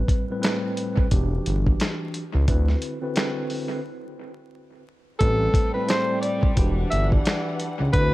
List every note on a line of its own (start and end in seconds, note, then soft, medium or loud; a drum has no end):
0.00 0.24 A2 medium
0.00 0.24 G3 medium
0.00 0.25 C4 medium
0.00 0.25 B4 loud
0.08 kick loud
0.08 closed hi-hat medium
0.30 0.39 A2 medium
0.30 0.40 G3 medium
0.30 0.40 C4 medium
0.30 0.41 B4 loud
0.40 1.05 A2 medium
0.40 1.06 G3 medium
0.40 1.06 C4 medium
0.40 1.06 B4 loud
0.40 closed hi-hat loud
0.45 snare loud
0.45 clap medium
0.77 closed hi-hat medium
0.97 kick medium
1.11 1.39 E1 loud
1.11 2.22 E3 medium
1.11 2.23 D4 medium
1.11 2.23 F#4 medium
1.11 2.23 G4 loud
1.11 kick medium
1.11 closed hi-hat loud
1.46 1.73 G1 medium
1.46 closed hi-hat medium
1.67 kick medium
1.80 snare loud
1.80 clap medium
1.80 closed hi-hat medium
2.14 closed hi-hat medium
2.35 2.46 C#2 medium
2.48 2.75 D2 loud
2.48 2.97 D3 medium
2.48 2.97 C4 medium
2.48 2.98 E4 medium
2.48 2.98 F#4 medium
2.48 2.98 B4 loud
2.48 kick loud
2.48 closed hi-hat medium
2.68 snare soft
2.82 closed hi-hat medium
3.01 3.14 D3 medium
3.01 3.14 C4 medium
3.01 3.15 E4 medium
3.01 3.15 F#4 medium
3.01 3.16 B4 medium
3.15 3.79 D3 loud
3.15 3.80 C4 medium
3.15 3.80 E4 medium
3.15 3.80 F#4 medium
3.15 3.80 B4 medium
3.15 snare loud
3.15 clap medium
3.15 closed hi-hat medium
3.50 open hi-hat soft
5.19 5.48 A1 loud
5.19 5.69 A2 loud
5.19 7.91 G3 medium
5.19 5.70 G3 medium
5.19 6.56 A3 medium
5.19 6.56 C4 medium
5.19 5.70 C4 medium
5.19 5.71 A4 loud
5.19 5.70 B4 loud
5.19 kick loud
5.19 closed hi-hat loud
5.54 kick loud
5.54 closed hi-hat medium
5.74 5.85 A2 medium
5.74 5.86 G3 medium
5.74 5.86 C4 medium
5.74 5.87 B4 medium
5.74 5.93 B4 loud
5.86 6.51 A2 medium
5.86 6.52 G3 medium
5.86 6.52 C4 medium
5.86 6.52 C5 loud
5.86 6.20 C5 medium
5.86 snare loud
5.86 closed hi-hat loud
5.91 clap medium
6.21 6.53 D5 medium
6.21 closed hi-hat medium
6.43 kick medium
6.55 6.84 E1 loud
6.55 7.67 E3 loud
6.55 7.92 E3 medium
6.55 7.68 D4 medium
6.55 7.92 D4 medium
6.55 7.68 F#4 medium
6.55 7.68 G4 loud
6.55 7.92 F#5 medium
6.55 kick loud
6.55 closed hi-hat loud
6.90 7.19 G1 medium
6.90 7.08 E5 medium
6.90 closed hi-hat medium
7.12 kick medium
7.25 snare loud
7.25 clap medium
7.25 closed hi-hat medium
7.60 closed hi-hat medium
7.80 7.91 C#2 medium
7.93 8.14 D2 loud
7.93 8.14 D3 medium
7.93 8.14 C4 medium
7.93 8.14 E4 medium
7.93 8.14 F#4 medium
7.93 8.14 B4 loud
7.93 8.14 B4 medium
7.93 kick loud
7.93 closed hi-hat medium
7.97 8.14 F#4 medium
7.97 8.14 B4 loud